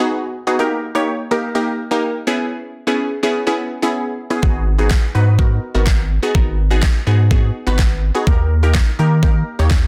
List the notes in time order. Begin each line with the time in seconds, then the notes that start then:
0.00 B3 D#4 F#4 G#4
0.47 B3 D#4 F#4 G#4
0.59 A#3 D#4 G4 A#4
0.95 A#3 D#4 G4 C#5
1.31 A#3 D#4 G4 A#4
1.55 A#3 D#4 G4 A#4
1.91 A#3 D#4 G4 A#4
2.27 B3 C#4 E4 G#4
2.87 B3 C#4 E4 G#4
3.23 B3 C#4 E4 G#4
3.47 B3 C#4 E4 G#4
3.82 B3 C#4 E4 G#4
4.30 B3 C#4 E4 G#4
4.42 G#1 B3 D#4 F#4 G#4, kick
4.78 B3 D#4 F#4 G#4
4.91 kick, snare, clap
5.15 G#2 B3 D#4 F#4 B4
5.38 B3 D#4 F#4 A#4, kick
5.74 G#1 B3 D#4 F#4 A#4
5.87 kick, snare, clap
6.23 B3 D#4 F#4 G#4
6.34 G#1 B3 D#4 F#4 A#4, kick
6.70 B3 D#4 F#4 G#4
6.83 kick, snare, clap
7.07 G#2 B3 D#4 F#4 G#4
7.31 B3 D#4 F#4 G#4, kick
7.67 G#1 B3 D#4 F#4 B4
7.79 kick, snare, clap
8.15 B3 D#4 F#4 G#4
8.27 D#2 A#3 D#4 G4 A#4, kick
8.63 A#3 D#4 G4 A#4
8.75 kick, snare, clap
8.99 D#3 A#3 D#4 G4 A#4
9.23 A#3 D#4 G4 A#4, kick
9.59 D#2 A#3 D#4 G4 C#5
9.71 kick, snare, clap